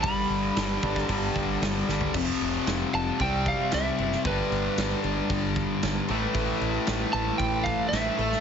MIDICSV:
0, 0, Header, 1, 5, 480
1, 0, Start_track
1, 0, Tempo, 524934
1, 38, Time_signature, 4, 2, 24, 8
1, 7684, End_track
2, 0, Start_track
2, 0, Title_t, "Lead electric guitar"
2, 0, Program_c, 0, 29
2, 26, Note_on_c, 0, 83, 94
2, 968, Note_off_c, 0, 83, 0
2, 968, Note_on_c, 0, 81, 94
2, 1439, Note_off_c, 0, 81, 0
2, 2696, Note_on_c, 0, 81, 107
2, 2935, Note_off_c, 0, 81, 0
2, 2938, Note_on_c, 0, 79, 103
2, 3178, Note_off_c, 0, 79, 0
2, 3184, Note_on_c, 0, 77, 87
2, 3417, Note_off_c, 0, 77, 0
2, 3420, Note_on_c, 0, 76, 97
2, 3859, Note_off_c, 0, 76, 0
2, 3904, Note_on_c, 0, 71, 76
2, 4577, Note_off_c, 0, 71, 0
2, 6519, Note_on_c, 0, 81, 115
2, 6746, Note_off_c, 0, 81, 0
2, 6749, Note_on_c, 0, 79, 100
2, 6982, Note_on_c, 0, 77, 94
2, 7003, Note_off_c, 0, 79, 0
2, 7208, Note_off_c, 0, 77, 0
2, 7212, Note_on_c, 0, 76, 102
2, 7684, Note_off_c, 0, 76, 0
2, 7684, End_track
3, 0, Start_track
3, 0, Title_t, "Distorted electric guitar"
3, 0, Program_c, 1, 30
3, 40, Note_on_c, 1, 43, 102
3, 47, Note_on_c, 1, 50, 84
3, 53, Note_on_c, 1, 55, 114
3, 508, Note_off_c, 1, 43, 0
3, 513, Note_off_c, 1, 50, 0
3, 517, Note_off_c, 1, 55, 0
3, 519, Note_on_c, 1, 43, 83
3, 524, Note_on_c, 1, 50, 87
3, 528, Note_on_c, 1, 55, 95
3, 745, Note_off_c, 1, 43, 0
3, 750, Note_off_c, 1, 50, 0
3, 752, Note_off_c, 1, 55, 0
3, 756, Note_on_c, 1, 43, 81
3, 761, Note_on_c, 1, 50, 78
3, 763, Note_on_c, 1, 55, 95
3, 984, Note_off_c, 1, 43, 0
3, 989, Note_off_c, 1, 50, 0
3, 995, Note_off_c, 1, 55, 0
3, 995, Note_on_c, 1, 43, 103
3, 1000, Note_on_c, 1, 50, 110
3, 1006, Note_on_c, 1, 55, 89
3, 1470, Note_off_c, 1, 43, 0
3, 1474, Note_off_c, 1, 50, 0
3, 1479, Note_off_c, 1, 55, 0
3, 1481, Note_on_c, 1, 43, 85
3, 1485, Note_on_c, 1, 50, 84
3, 1490, Note_on_c, 1, 55, 92
3, 1712, Note_off_c, 1, 43, 0
3, 1716, Note_off_c, 1, 50, 0
3, 1723, Note_on_c, 1, 43, 93
3, 1724, Note_off_c, 1, 55, 0
3, 1727, Note_on_c, 1, 50, 92
3, 1735, Note_on_c, 1, 55, 106
3, 1948, Note_off_c, 1, 43, 0
3, 1950, Note_off_c, 1, 50, 0
3, 1954, Note_off_c, 1, 55, 0
3, 1961, Note_on_c, 1, 41, 86
3, 1975, Note_on_c, 1, 48, 86
3, 1984, Note_on_c, 1, 53, 94
3, 2905, Note_off_c, 1, 48, 0
3, 2908, Note_off_c, 1, 41, 0
3, 2916, Note_on_c, 1, 48, 80
3, 2919, Note_off_c, 1, 53, 0
3, 2937, Note_on_c, 1, 55, 92
3, 2946, Note_on_c, 1, 60, 92
3, 3865, Note_off_c, 1, 48, 0
3, 3876, Note_off_c, 1, 55, 0
3, 3880, Note_off_c, 1, 60, 0
3, 3884, Note_on_c, 1, 43, 98
3, 3901, Note_on_c, 1, 50, 109
3, 3910, Note_on_c, 1, 55, 104
3, 5549, Note_off_c, 1, 43, 0
3, 5557, Note_off_c, 1, 50, 0
3, 5562, Note_off_c, 1, 55, 0
3, 5562, Note_on_c, 1, 45, 104
3, 5577, Note_on_c, 1, 52, 111
3, 5590, Note_on_c, 1, 57, 101
3, 7227, Note_off_c, 1, 45, 0
3, 7234, Note_off_c, 1, 52, 0
3, 7236, Note_on_c, 1, 45, 84
3, 7254, Note_on_c, 1, 52, 83
3, 7263, Note_off_c, 1, 57, 0
3, 7266, Note_on_c, 1, 57, 93
3, 7464, Note_off_c, 1, 45, 0
3, 7473, Note_off_c, 1, 52, 0
3, 7684, Note_off_c, 1, 57, 0
3, 7684, End_track
4, 0, Start_track
4, 0, Title_t, "Fingered electric bass"
4, 0, Program_c, 2, 33
4, 33, Note_on_c, 2, 31, 89
4, 216, Note_off_c, 2, 31, 0
4, 270, Note_on_c, 2, 31, 80
4, 454, Note_off_c, 2, 31, 0
4, 515, Note_on_c, 2, 31, 73
4, 698, Note_off_c, 2, 31, 0
4, 761, Note_on_c, 2, 31, 101
4, 942, Note_off_c, 2, 31, 0
4, 996, Note_on_c, 2, 31, 105
4, 1178, Note_off_c, 2, 31, 0
4, 1243, Note_on_c, 2, 31, 84
4, 1423, Note_off_c, 2, 31, 0
4, 1478, Note_on_c, 2, 31, 97
4, 1660, Note_off_c, 2, 31, 0
4, 1722, Note_on_c, 2, 31, 100
4, 1903, Note_off_c, 2, 31, 0
4, 1959, Note_on_c, 2, 29, 94
4, 2104, Note_off_c, 2, 29, 0
4, 2207, Note_on_c, 2, 29, 82
4, 2350, Note_off_c, 2, 29, 0
4, 2441, Note_on_c, 2, 29, 76
4, 2586, Note_off_c, 2, 29, 0
4, 2687, Note_on_c, 2, 29, 80
4, 2830, Note_off_c, 2, 29, 0
4, 2925, Note_on_c, 2, 36, 101
4, 3214, Note_off_c, 2, 36, 0
4, 3415, Note_on_c, 2, 36, 91
4, 3556, Note_off_c, 2, 36, 0
4, 3648, Note_on_c, 2, 30, 91
4, 3791, Note_off_c, 2, 30, 0
4, 3888, Note_on_c, 2, 31, 89
4, 4031, Note_off_c, 2, 31, 0
4, 4127, Note_on_c, 2, 31, 84
4, 4270, Note_off_c, 2, 31, 0
4, 4365, Note_on_c, 2, 31, 83
4, 4509, Note_off_c, 2, 31, 0
4, 4606, Note_on_c, 2, 31, 94
4, 4749, Note_off_c, 2, 31, 0
4, 4846, Note_on_c, 2, 31, 102
4, 5134, Note_off_c, 2, 31, 0
4, 5330, Note_on_c, 2, 31, 91
4, 5472, Note_off_c, 2, 31, 0
4, 5571, Note_on_c, 2, 33, 90
4, 5713, Note_off_c, 2, 33, 0
4, 5804, Note_on_c, 2, 33, 103
4, 5948, Note_off_c, 2, 33, 0
4, 6043, Note_on_c, 2, 33, 90
4, 6187, Note_off_c, 2, 33, 0
4, 6287, Note_on_c, 2, 33, 86
4, 6430, Note_off_c, 2, 33, 0
4, 6526, Note_on_c, 2, 33, 92
4, 6669, Note_off_c, 2, 33, 0
4, 6763, Note_on_c, 2, 33, 102
4, 7051, Note_off_c, 2, 33, 0
4, 7249, Note_on_c, 2, 33, 90
4, 7391, Note_off_c, 2, 33, 0
4, 7483, Note_on_c, 2, 33, 97
4, 7627, Note_off_c, 2, 33, 0
4, 7684, End_track
5, 0, Start_track
5, 0, Title_t, "Drums"
5, 34, Note_on_c, 9, 36, 121
5, 37, Note_on_c, 9, 46, 56
5, 126, Note_off_c, 9, 36, 0
5, 128, Note_off_c, 9, 46, 0
5, 515, Note_on_c, 9, 46, 51
5, 521, Note_on_c, 9, 38, 95
5, 606, Note_off_c, 9, 46, 0
5, 612, Note_off_c, 9, 38, 0
5, 759, Note_on_c, 9, 36, 79
5, 851, Note_off_c, 9, 36, 0
5, 879, Note_on_c, 9, 36, 75
5, 886, Note_on_c, 9, 38, 31
5, 970, Note_off_c, 9, 36, 0
5, 978, Note_off_c, 9, 38, 0
5, 998, Note_on_c, 9, 36, 80
5, 999, Note_on_c, 9, 46, 58
5, 1089, Note_off_c, 9, 36, 0
5, 1091, Note_off_c, 9, 46, 0
5, 1241, Note_on_c, 9, 36, 68
5, 1332, Note_off_c, 9, 36, 0
5, 1483, Note_on_c, 9, 46, 45
5, 1489, Note_on_c, 9, 38, 102
5, 1575, Note_off_c, 9, 46, 0
5, 1581, Note_off_c, 9, 38, 0
5, 1728, Note_on_c, 9, 38, 62
5, 1819, Note_off_c, 9, 38, 0
5, 1835, Note_on_c, 9, 43, 84
5, 1926, Note_off_c, 9, 43, 0
5, 1957, Note_on_c, 9, 49, 127
5, 1957, Note_on_c, 9, 57, 79
5, 1961, Note_on_c, 9, 36, 103
5, 2049, Note_off_c, 9, 49, 0
5, 2049, Note_off_c, 9, 57, 0
5, 2052, Note_off_c, 9, 36, 0
5, 2203, Note_on_c, 9, 57, 61
5, 2295, Note_off_c, 9, 57, 0
5, 2439, Note_on_c, 9, 57, 71
5, 2445, Note_on_c, 9, 38, 101
5, 2530, Note_off_c, 9, 57, 0
5, 2537, Note_off_c, 9, 38, 0
5, 2684, Note_on_c, 9, 57, 49
5, 2775, Note_off_c, 9, 57, 0
5, 2922, Note_on_c, 9, 57, 77
5, 2925, Note_on_c, 9, 36, 76
5, 3014, Note_off_c, 9, 57, 0
5, 3016, Note_off_c, 9, 36, 0
5, 3164, Note_on_c, 9, 57, 54
5, 3165, Note_on_c, 9, 36, 79
5, 3256, Note_off_c, 9, 36, 0
5, 3256, Note_off_c, 9, 57, 0
5, 3397, Note_on_c, 9, 57, 71
5, 3403, Note_on_c, 9, 38, 97
5, 3488, Note_off_c, 9, 57, 0
5, 3495, Note_off_c, 9, 38, 0
5, 3643, Note_on_c, 9, 57, 61
5, 3735, Note_off_c, 9, 57, 0
5, 3770, Note_on_c, 9, 38, 30
5, 3862, Note_off_c, 9, 38, 0
5, 3885, Note_on_c, 9, 57, 89
5, 3886, Note_on_c, 9, 36, 127
5, 3977, Note_off_c, 9, 57, 0
5, 3978, Note_off_c, 9, 36, 0
5, 4133, Note_on_c, 9, 57, 63
5, 4224, Note_off_c, 9, 57, 0
5, 4368, Note_on_c, 9, 57, 82
5, 4374, Note_on_c, 9, 38, 107
5, 4459, Note_off_c, 9, 57, 0
5, 4465, Note_off_c, 9, 38, 0
5, 4607, Note_on_c, 9, 57, 55
5, 4698, Note_off_c, 9, 57, 0
5, 4846, Note_on_c, 9, 36, 86
5, 4846, Note_on_c, 9, 57, 74
5, 4937, Note_off_c, 9, 36, 0
5, 4938, Note_off_c, 9, 57, 0
5, 5085, Note_on_c, 9, 36, 82
5, 5090, Note_on_c, 9, 57, 54
5, 5177, Note_off_c, 9, 36, 0
5, 5182, Note_off_c, 9, 57, 0
5, 5326, Note_on_c, 9, 57, 73
5, 5333, Note_on_c, 9, 38, 98
5, 5418, Note_off_c, 9, 57, 0
5, 5424, Note_off_c, 9, 38, 0
5, 5563, Note_on_c, 9, 57, 58
5, 5654, Note_off_c, 9, 57, 0
5, 5804, Note_on_c, 9, 36, 106
5, 5805, Note_on_c, 9, 57, 89
5, 5895, Note_off_c, 9, 36, 0
5, 5896, Note_off_c, 9, 57, 0
5, 6047, Note_on_c, 9, 57, 54
5, 6139, Note_off_c, 9, 57, 0
5, 6279, Note_on_c, 9, 57, 76
5, 6286, Note_on_c, 9, 38, 112
5, 6371, Note_off_c, 9, 57, 0
5, 6377, Note_off_c, 9, 38, 0
5, 6524, Note_on_c, 9, 57, 58
5, 6615, Note_off_c, 9, 57, 0
5, 6762, Note_on_c, 9, 36, 82
5, 6764, Note_on_c, 9, 57, 71
5, 6854, Note_off_c, 9, 36, 0
5, 6855, Note_off_c, 9, 57, 0
5, 7003, Note_on_c, 9, 36, 84
5, 7003, Note_on_c, 9, 57, 53
5, 7094, Note_off_c, 9, 36, 0
5, 7095, Note_off_c, 9, 57, 0
5, 7250, Note_on_c, 9, 57, 69
5, 7256, Note_on_c, 9, 38, 94
5, 7341, Note_off_c, 9, 57, 0
5, 7347, Note_off_c, 9, 38, 0
5, 7483, Note_on_c, 9, 57, 57
5, 7575, Note_off_c, 9, 57, 0
5, 7607, Note_on_c, 9, 38, 30
5, 7684, Note_off_c, 9, 38, 0
5, 7684, End_track
0, 0, End_of_file